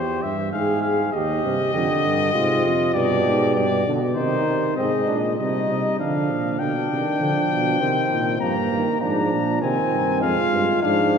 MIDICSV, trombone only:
0, 0, Header, 1, 2, 480
1, 0, Start_track
1, 0, Tempo, 606061
1, 900, Time_signature, 3, 2, 24, 8
1, 8855, End_track
2, 0, Start_track
2, 0, Title_t, "Trombone"
2, 0, Program_c, 0, 57
2, 1144, Note_on_c, 0, 48, 71
2, 1383, Note_on_c, 0, 50, 76
2, 1395, Note_off_c, 0, 48, 0
2, 1843, Note_off_c, 0, 50, 0
2, 1848, Note_on_c, 0, 48, 76
2, 2330, Note_on_c, 0, 47, 82
2, 2342, Note_off_c, 0, 48, 0
2, 3052, Note_off_c, 0, 47, 0
2, 3057, Note_on_c, 0, 50, 79
2, 3165, Note_off_c, 0, 50, 0
2, 3292, Note_on_c, 0, 51, 78
2, 3771, Note_off_c, 0, 51, 0
2, 3780, Note_on_c, 0, 56, 58
2, 4235, Note_off_c, 0, 56, 0
2, 4267, Note_on_c, 0, 55, 53
2, 4739, Note_off_c, 0, 55, 0
2, 4748, Note_on_c, 0, 53, 57
2, 5219, Note_off_c, 0, 53, 0
2, 5227, Note_on_c, 0, 50, 63
2, 5335, Note_off_c, 0, 50, 0
2, 5470, Note_on_c, 0, 51, 54
2, 5707, Note_on_c, 0, 53, 61
2, 5719, Note_off_c, 0, 51, 0
2, 6185, Note_on_c, 0, 51, 69
2, 6196, Note_off_c, 0, 53, 0
2, 6654, Note_off_c, 0, 51, 0
2, 6659, Note_on_c, 0, 53, 64
2, 6768, Note_off_c, 0, 53, 0
2, 6904, Note_on_c, 0, 51, 63
2, 7131, Note_off_c, 0, 51, 0
2, 7136, Note_on_c, 0, 53, 68
2, 7609, Note_off_c, 0, 53, 0
2, 7618, Note_on_c, 0, 51, 70
2, 8098, Note_on_c, 0, 56, 73
2, 8110, Note_off_c, 0, 51, 0
2, 8576, Note_off_c, 0, 56, 0
2, 8581, Note_on_c, 0, 53, 65
2, 8855, Note_off_c, 0, 53, 0
2, 8855, End_track
0, 0, End_of_file